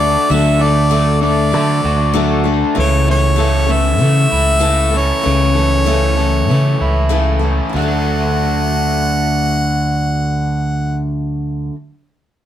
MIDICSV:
0, 0, Header, 1, 5, 480
1, 0, Start_track
1, 0, Key_signature, 2, "major"
1, 0, Tempo, 621762
1, 225, Time_signature, 4, 2, 24, 8
1, 9615, End_track
2, 0, Start_track
2, 0, Title_t, "Harmonica"
2, 0, Program_c, 0, 22
2, 0, Note_on_c, 0, 74, 92
2, 240, Note_on_c, 0, 76, 81
2, 251, Note_off_c, 0, 74, 0
2, 480, Note_on_c, 0, 74, 81
2, 491, Note_off_c, 0, 76, 0
2, 936, Note_off_c, 0, 74, 0
2, 941, Note_on_c, 0, 74, 76
2, 1866, Note_off_c, 0, 74, 0
2, 2158, Note_on_c, 0, 73, 84
2, 2370, Note_off_c, 0, 73, 0
2, 2399, Note_on_c, 0, 73, 85
2, 2873, Note_on_c, 0, 76, 109
2, 2884, Note_off_c, 0, 73, 0
2, 3841, Note_on_c, 0, 73, 90
2, 3852, Note_off_c, 0, 76, 0
2, 5508, Note_off_c, 0, 73, 0
2, 5989, Note_on_c, 0, 78, 79
2, 8494, Note_off_c, 0, 78, 0
2, 9615, End_track
3, 0, Start_track
3, 0, Title_t, "Steel-string acoustic guitar"
3, 0, Program_c, 1, 25
3, 0, Note_on_c, 1, 57, 41
3, 0, Note_on_c, 1, 62, 51
3, 0, Note_on_c, 1, 69, 52
3, 222, Note_off_c, 1, 69, 0
3, 226, Note_off_c, 1, 62, 0
3, 229, Note_on_c, 1, 50, 61
3, 230, Note_off_c, 1, 57, 0
3, 231, Note_on_c, 1, 54, 65
3, 240, Note_on_c, 1, 57, 63
3, 241, Note_on_c, 1, 62, 75
3, 245, Note_on_c, 1, 69, 73
3, 446, Note_off_c, 1, 69, 0
3, 456, Note_on_c, 1, 69, 55
3, 457, Note_off_c, 1, 62, 0
3, 466, Note_off_c, 1, 50, 0
3, 466, Note_on_c, 1, 62, 45
3, 467, Note_off_c, 1, 54, 0
3, 471, Note_off_c, 1, 57, 0
3, 481, Note_on_c, 1, 57, 37
3, 690, Note_off_c, 1, 57, 0
3, 692, Note_off_c, 1, 69, 0
3, 693, Note_on_c, 1, 50, 67
3, 696, Note_off_c, 1, 62, 0
3, 699, Note_on_c, 1, 57, 70
3, 700, Note_on_c, 1, 54, 75
3, 701, Note_on_c, 1, 69, 72
3, 705, Note_on_c, 1, 62, 74
3, 923, Note_off_c, 1, 69, 0
3, 929, Note_off_c, 1, 62, 0
3, 933, Note_on_c, 1, 69, 47
3, 937, Note_off_c, 1, 50, 0
3, 938, Note_off_c, 1, 57, 0
3, 938, Note_on_c, 1, 62, 42
3, 940, Note_off_c, 1, 54, 0
3, 947, Note_on_c, 1, 57, 39
3, 1162, Note_off_c, 1, 57, 0
3, 1164, Note_on_c, 1, 54, 42
3, 1171, Note_off_c, 1, 62, 0
3, 1172, Note_on_c, 1, 57, 54
3, 1176, Note_off_c, 1, 69, 0
3, 1180, Note_on_c, 1, 62, 46
3, 1184, Note_on_c, 1, 69, 50
3, 1640, Note_off_c, 1, 54, 0
3, 1645, Note_off_c, 1, 57, 0
3, 1648, Note_on_c, 1, 50, 75
3, 1649, Note_on_c, 1, 54, 82
3, 1649, Note_on_c, 1, 57, 87
3, 1650, Note_off_c, 1, 62, 0
3, 1659, Note_on_c, 1, 62, 77
3, 1660, Note_off_c, 1, 69, 0
3, 1663, Note_on_c, 1, 69, 79
3, 1873, Note_off_c, 1, 69, 0
3, 1882, Note_on_c, 1, 69, 55
3, 1884, Note_off_c, 1, 62, 0
3, 1888, Note_off_c, 1, 57, 0
3, 1892, Note_off_c, 1, 50, 0
3, 1893, Note_off_c, 1, 54, 0
3, 1894, Note_on_c, 1, 62, 54
3, 1897, Note_on_c, 1, 57, 46
3, 2114, Note_off_c, 1, 57, 0
3, 2120, Note_off_c, 1, 69, 0
3, 2122, Note_on_c, 1, 52, 69
3, 2123, Note_on_c, 1, 49, 54
3, 2123, Note_on_c, 1, 57, 62
3, 2125, Note_off_c, 1, 62, 0
3, 2128, Note_on_c, 1, 61, 67
3, 2129, Note_on_c, 1, 69, 76
3, 2352, Note_off_c, 1, 69, 0
3, 2361, Note_on_c, 1, 69, 45
3, 2366, Note_off_c, 1, 57, 0
3, 2367, Note_off_c, 1, 61, 0
3, 2368, Note_off_c, 1, 52, 0
3, 2369, Note_off_c, 1, 49, 0
3, 2375, Note_on_c, 1, 57, 36
3, 2376, Note_on_c, 1, 61, 41
3, 2585, Note_off_c, 1, 57, 0
3, 2591, Note_on_c, 1, 49, 65
3, 2594, Note_off_c, 1, 61, 0
3, 2594, Note_on_c, 1, 52, 64
3, 2595, Note_on_c, 1, 57, 69
3, 2600, Note_off_c, 1, 69, 0
3, 2604, Note_on_c, 1, 61, 70
3, 2609, Note_on_c, 1, 69, 72
3, 2822, Note_off_c, 1, 69, 0
3, 2832, Note_on_c, 1, 69, 46
3, 2833, Note_off_c, 1, 61, 0
3, 2841, Note_off_c, 1, 57, 0
3, 2842, Note_on_c, 1, 61, 43
3, 2843, Note_off_c, 1, 49, 0
3, 2844, Note_off_c, 1, 52, 0
3, 2850, Note_on_c, 1, 57, 42
3, 3071, Note_off_c, 1, 57, 0
3, 3075, Note_on_c, 1, 52, 52
3, 3080, Note_on_c, 1, 57, 47
3, 3082, Note_off_c, 1, 61, 0
3, 3083, Note_off_c, 1, 69, 0
3, 3091, Note_on_c, 1, 61, 44
3, 3091, Note_on_c, 1, 69, 58
3, 3544, Note_off_c, 1, 52, 0
3, 3547, Note_off_c, 1, 61, 0
3, 3547, Note_on_c, 1, 49, 77
3, 3550, Note_off_c, 1, 57, 0
3, 3553, Note_on_c, 1, 52, 85
3, 3553, Note_on_c, 1, 57, 80
3, 3556, Note_off_c, 1, 69, 0
3, 3557, Note_on_c, 1, 61, 76
3, 3559, Note_on_c, 1, 69, 94
3, 3777, Note_off_c, 1, 69, 0
3, 3787, Note_on_c, 1, 69, 46
3, 3792, Note_off_c, 1, 61, 0
3, 3800, Note_off_c, 1, 49, 0
3, 3801, Note_on_c, 1, 61, 46
3, 3803, Note_off_c, 1, 52, 0
3, 3803, Note_off_c, 1, 57, 0
3, 3812, Note_on_c, 1, 57, 40
3, 4029, Note_on_c, 1, 49, 57
3, 4030, Note_off_c, 1, 57, 0
3, 4031, Note_off_c, 1, 61, 0
3, 4038, Note_off_c, 1, 69, 0
3, 4038, Note_on_c, 1, 52, 60
3, 4040, Note_on_c, 1, 57, 62
3, 4040, Note_on_c, 1, 61, 66
3, 4047, Note_on_c, 1, 69, 67
3, 4275, Note_off_c, 1, 69, 0
3, 4282, Note_off_c, 1, 49, 0
3, 4284, Note_on_c, 1, 69, 43
3, 4285, Note_off_c, 1, 61, 0
3, 4286, Note_off_c, 1, 52, 0
3, 4287, Note_off_c, 1, 57, 0
3, 4294, Note_on_c, 1, 61, 41
3, 4302, Note_on_c, 1, 57, 40
3, 4516, Note_off_c, 1, 61, 0
3, 4516, Note_on_c, 1, 49, 67
3, 4517, Note_off_c, 1, 57, 0
3, 4522, Note_off_c, 1, 69, 0
3, 4525, Note_on_c, 1, 61, 76
3, 4526, Note_on_c, 1, 57, 81
3, 4527, Note_on_c, 1, 52, 73
3, 4532, Note_on_c, 1, 69, 86
3, 4751, Note_off_c, 1, 69, 0
3, 4761, Note_on_c, 1, 69, 52
3, 4764, Note_off_c, 1, 61, 0
3, 4765, Note_off_c, 1, 49, 0
3, 4770, Note_off_c, 1, 52, 0
3, 4770, Note_off_c, 1, 57, 0
3, 4774, Note_on_c, 1, 61, 38
3, 4787, Note_on_c, 1, 57, 46
3, 5004, Note_on_c, 1, 52, 53
3, 5007, Note_off_c, 1, 69, 0
3, 5008, Note_off_c, 1, 57, 0
3, 5014, Note_off_c, 1, 61, 0
3, 5017, Note_on_c, 1, 57, 53
3, 5026, Note_on_c, 1, 69, 51
3, 5027, Note_on_c, 1, 61, 55
3, 5470, Note_off_c, 1, 52, 0
3, 5474, Note_off_c, 1, 61, 0
3, 5475, Note_on_c, 1, 49, 80
3, 5476, Note_off_c, 1, 69, 0
3, 5479, Note_off_c, 1, 57, 0
3, 5480, Note_on_c, 1, 52, 70
3, 5483, Note_on_c, 1, 61, 74
3, 5485, Note_on_c, 1, 69, 83
3, 5488, Note_on_c, 1, 57, 68
3, 5699, Note_off_c, 1, 69, 0
3, 5708, Note_on_c, 1, 69, 54
3, 5711, Note_off_c, 1, 61, 0
3, 5720, Note_on_c, 1, 61, 48
3, 5723, Note_off_c, 1, 57, 0
3, 5725, Note_off_c, 1, 49, 0
3, 5728, Note_off_c, 1, 52, 0
3, 5732, Note_on_c, 1, 57, 40
3, 5940, Note_on_c, 1, 50, 55
3, 5962, Note_off_c, 1, 69, 0
3, 5966, Note_on_c, 1, 54, 64
3, 5968, Note_off_c, 1, 61, 0
3, 5974, Note_off_c, 1, 57, 0
3, 5993, Note_on_c, 1, 57, 61
3, 6013, Note_on_c, 1, 62, 62
3, 6037, Note_on_c, 1, 69, 64
3, 9040, Note_off_c, 1, 50, 0
3, 9054, Note_off_c, 1, 54, 0
3, 9067, Note_off_c, 1, 57, 0
3, 9077, Note_off_c, 1, 62, 0
3, 9089, Note_off_c, 1, 69, 0
3, 9615, End_track
4, 0, Start_track
4, 0, Title_t, "Overdriven electric guitar"
4, 0, Program_c, 2, 29
4, 0, Note_on_c, 2, 50, 59
4, 0, Note_on_c, 2, 57, 70
4, 0, Note_on_c, 2, 66, 65
4, 222, Note_off_c, 2, 50, 0
4, 473, Note_off_c, 2, 57, 0
4, 706, Note_off_c, 2, 66, 0
4, 950, Note_on_c, 2, 50, 52
4, 1430, Note_on_c, 2, 66, 67
4, 2141, Note_off_c, 2, 50, 0
4, 2142, Note_off_c, 2, 66, 0
4, 2382, Note_on_c, 2, 52, 67
4, 2847, Note_off_c, 2, 52, 0
4, 2857, Note_on_c, 2, 52, 53
4, 3333, Note_on_c, 2, 64, 68
4, 4054, Note_off_c, 2, 52, 0
4, 4287, Note_on_c, 2, 52, 57
4, 4533, Note_off_c, 2, 64, 0
4, 4765, Note_off_c, 2, 52, 0
4, 4775, Note_on_c, 2, 52, 50
4, 5257, Note_on_c, 2, 64, 60
4, 5975, Note_off_c, 2, 52, 0
4, 5977, Note_off_c, 2, 64, 0
4, 5978, Note_on_c, 2, 50, 70
4, 6008, Note_on_c, 2, 66, 83
4, 9059, Note_off_c, 2, 50, 0
4, 9074, Note_off_c, 2, 66, 0
4, 9615, End_track
5, 0, Start_track
5, 0, Title_t, "Fingered electric bass"
5, 0, Program_c, 3, 33
5, 0, Note_on_c, 3, 38, 80
5, 121, Note_off_c, 3, 38, 0
5, 232, Note_on_c, 3, 38, 94
5, 1188, Note_off_c, 3, 38, 0
5, 1188, Note_on_c, 3, 50, 85
5, 1386, Note_off_c, 3, 50, 0
5, 1423, Note_on_c, 3, 38, 76
5, 2028, Note_off_c, 3, 38, 0
5, 2142, Note_on_c, 3, 37, 88
5, 3093, Note_off_c, 3, 37, 0
5, 3093, Note_on_c, 3, 49, 80
5, 3296, Note_off_c, 3, 49, 0
5, 3335, Note_on_c, 3, 37, 75
5, 3943, Note_off_c, 3, 37, 0
5, 4058, Note_on_c, 3, 37, 86
5, 5019, Note_off_c, 3, 37, 0
5, 5019, Note_on_c, 3, 49, 75
5, 5220, Note_off_c, 3, 49, 0
5, 5255, Note_on_c, 3, 37, 72
5, 5864, Note_off_c, 3, 37, 0
5, 5976, Note_on_c, 3, 38, 77
5, 9027, Note_off_c, 3, 38, 0
5, 9615, End_track
0, 0, End_of_file